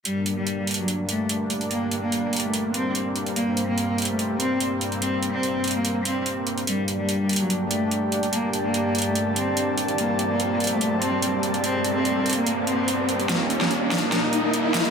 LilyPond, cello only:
\new Staff \with { instrumentName = "Cello" } { \time 4/4 \key g \minor \tempo 4 = 145 g8 r16 g8. r16 fis8 r16 a8 r4 | bes8 r16 bes8. r16 a8 r16 c'8 r4 | bes8 r16 bes8. r16 a8 r16 c'8 r4 | c'8 r16 c'8. r16 bes8 r16 c'8 r4 |
g8 r16 g8. r16 fis8 r16 a8 r4 | bes8 r16 bes8. r16 a8 r16 c'8 r4 | bes8 r16 bes8. r16 a8 r16 c'8 r4 | c'8 r16 c'8. r16 bes8 r16 c'8 r4 |
bes8 r16 bes8. r16 bes16 bes8 r16 bes8. r16 bes16 | }